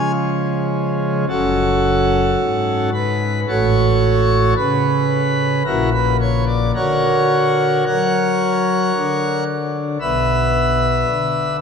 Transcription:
Already playing: C#3 F3 G#3 C#4 G#4 F5 G#5
1.29 F#1 F#2 C#4 F#4 A4
2.40 G#2
2.94 B4
3.49 A1 A2 F#4 A4 C#5
4.57 C#3 B4
5.66 A#1 A#2 E4 F#4 A#4
5.94 B4
6.21 C#5
6.48 D5
6.75 D3 F#4 A#4 C#5
7.87 F#3 A#4 C#5 F#5
8.95 D3
10.01 B1 B2 B4 E5
11.07 D3

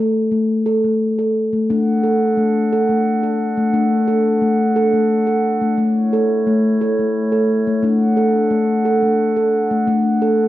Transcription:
Already playing: A4
0.32 A3
0.66 A4
0.84 A3
1.19 A4
1.53 A3
1.69 A3 D4 A4 F#5
2.03 A4
2.37 A3
2.72 A4
2.89 A3
3.23 A4
3.57 A3
3.74 A3 D4
4.08 A4
4.42 A3
4.76 A4
4.94 A3
5.27 A4
5.62 A3
5.78 A3 E4 C#5
6.13 A4
6.47 A3
6.81 A4
6.99 A3
7.32 A4
7.67 A3
7.83 A3 D4 A4 F#5
8.17 A4
8.50 A3
8.85 A4
9.02 A3
9.36 A4
9.71 A3
9.87 A3 D4 A4 F#5
10.22 A4

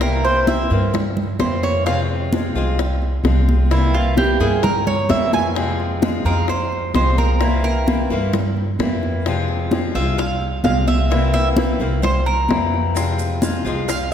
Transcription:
Already playing: C2
0.01 C3 E3 A#3 C4 E4 A#4, high bongo, high conga
0.25 C5, high bongo, high conga
0.47 E3 A#3 C4 E4 E5, high bongo, high conga
0.70 G2 E3 A#3 C4 E4, high bongo, high conga
0.93 muted steel-string acoustic guitar stroke, high bongo, high conga, low conga
1.17 high conga, low conga
1.39 F2 E3 A#3 C4 E4 C5, high bongo, low bongo, high conga
1.63 C#5, high bongo
1.86 C3 F3 G#3 C4 F4 F5, high bongo, high conga
2.09 high conga
2.33 F3 G#3 C4 F4, high bongo, high conga
2.55 C2 F3 G#3 C4 F4, high conga
2.79 muted steel-string acoustic guitar stroke, high bongo, high conga
3.02 high conga
3.24 C2 F3 G#3 C4 F4, high bongo, low bongo, high conga
3.49 high conga
3.71 C3 E3 A#3 C4 E4, high bongo, high conga
3.94 F4, high bongo, high conga
4.17 E3 A#3 C4 E4 G4, high bongo, high conga
4.40 G2 E3 A#3 C4 E4 G#4, high bongo, high conga
4.63 A#4, muted steel-string acoustic guitar stroke, high bongo, high conga, low conga
4.87 C#5, high conga, low conga
5.09 F2 E3 A#3 C4 E4 E5, high bongo, low bongo, high conga
5.33 G#5, high bongo, high conga
5.55 C3 F3 G#3 C4 F4, high bongo, high conga
5.80 high conga
6.02 F3 G#3 C4 F4, high bongo, high conga
6.24 F2 F3 G#3 C4 F4 A#4, high conga
6.48 C5, muted steel-string acoustic guitar stroke, high bongo, high conga
6.72 high conga
6.94 C2 F3 G#3 C4 F4 C5, high bongo, low bongo, high conga
7.18 A#4, high conga
7.40 C3 E3 A#3 C4 E4, high bongo, high conga
7.64 A#4, high bongo, high conga
7.86 E3 A#3 C4 E4, high bongo, high conga
8.10 G2 E3 A#3 C4 E4, high bongo, high conga
8.33 muted steel-string acoustic guitar stroke, high bongo, high conga, low conga
8.57 high conga
8.79 F2 E3 A#3 C4 E4, high bongo, low bongo, high conga
9.03 high bongo
9.26 C3 F3 G#3 C4 F4, high bongo, high conga
9.48 high conga
9.71 F3 G#3 C4 F4, high bongo, high conga
9.95 C2 F3 G#3 C4 F4 E5, high conga
10.18 F5, muted steel-string acoustic guitar stroke, high bongo, high conga
10.41 high conga
10.64 C2 F3 G#3 C4 F4 F5, high bongo, low bongo, high conga
10.88 E5, high conga
11.10 C3 E3 A#3 C4 E4, high bongo, high conga
11.34 E5, high bongo, high conga
11.56 E3 A#3 C4 E4, high bongo, high conga
11.79 C2 E3 A#3 C4 E4, high bongo, high conga
12.02 C5, muted steel-string acoustic guitar stroke, high bongo, high conga, low conga
12.26 A#4, high conga
12.48 F2 E3 A#3 C4 E4, high bongo, low bongo, high conga
12.74 high bongo
12.95 C3 F3 G#3 C4 F4, high bongo, high conga, maracas
13.18 high conga, maracas
13.41 F3 G#3 C4 F4, high bongo, high conga, maracas
13.65 C2 F3 G#3 C4 F4, high conga, maracas
13.88 F5, muted steel-string acoustic guitar stroke, high bongo, high conga, maracas

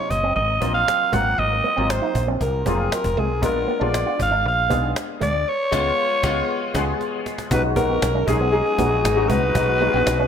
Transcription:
Already playing: C3 F#3 A#3 C4 F4 C#5
0.10 F#1 D#5, muted clean electric guitar stroke, cajon bass
0.23 C4
0.36 G#1 D#5, cajon slap
0.49 cajon slap
0.60 A#1 F#3 A#3 C4 F4, cajon bass
0.74 F5, cajon slap
0.88 cajon slap
1.12 G#1 F#3 G#3 A#3 C4 F4 F#5, cajon bass
1.38 G#1 D#5, cajon slap
1.51 muted clean electric guitar stroke
1.64 A#3, cajon slap
1.77 G#1 F#3 A#3 C4 F4
1.90 C5, cajon slap
2.02 D#4
2.15 A#1, muted clean electric guitar stroke, cajon bass
2.28 C4
2.41 C2 A#4, cajon bass
2.54 cajon slap
2.66 F1 F#3 A#3 C4 F4 G#4, cajon bass
2.92 A#4, cajon slap
3.04 F1, cajon bass
3.17 C2 G#3 G#4
3.29 B1
3.42 A#1 G#3 B3 D4 F4 A#4, cajon bass
3.55 muted clean electric guitar stroke
3.67 A#3, cajon slap
3.80 A#1 G#3 B3 D4 F4 D5
3.94 cajon slap
4.06 F4
4.19 G#1 F5, muted clean electric guitar stroke, cajon bass
4.31 D4
4.45 A#1 F5, cajon slap
4.58 cajon slap
4.70 B1 G#3 A#3 B3 D4 G#4, cajon bass
4.96 cajon slap
5.20 D2 G#3 D5, cajon bass
5.48 C#5
5.71 C#2 G#3 B3 F4, cajon bass, cajon slap
6.23 C#2 G#3 B3 F4, cajon bass, cajon slap
6.74 C#2 G#3 B3 G#4, cajon bass, cajon slap
7.01 cajon slap
7.26 cajon slap
7.38 cajon slap
7.51 B1 G#3 C#4 D#4 F#4 B4, cajon bass
7.63 muted clean electric guitar stroke
7.76 G#3 A#3 C#4 D#4 F#4 A#4, cajon bass
7.89 A#1 B3
8.02 B1, cajon slap
8.15 C#4
8.27 B1 G#3 C#4 D#4 G#4, muted clean electric guitar stroke, cajon bass
8.40 B3
8.52 F#3 G#3 B3 C#4 D#4 F#4 G#4, cajon slap
8.66 cajon slap
8.78 A#1 G#3 A#3 C#4 D#4 F#4, cajon bass
9.05 G#1, cajon slap
9.15 G#3 C#4 D#4 F#4
9.29 C2 G#3 B4, cajon bass
9.53 B1 G#3 C#4 D#4 F#4, cajon bass
9.68 muted clean electric guitar stroke
9.80 G#3 A#3 C#4 D#4 F#4, cajon slap
9.87 G#4
9.94 A#1 B3
10.06 B1, cajon slap
10.19 C#4

